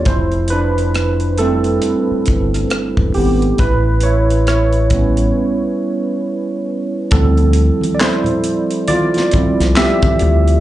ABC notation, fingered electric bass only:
X:1
M:4/4
L:1/16
Q:"Swing 16ths" 1/4=68
K:Am
V:1 name="Fingered electric bass" clef=bass
F,,,8 z2 G,,,2 z E,,, ^G,,,2 | A,,,8 z8 | [K:Dm] D,,3 z8 C,, z2 D,,2 |]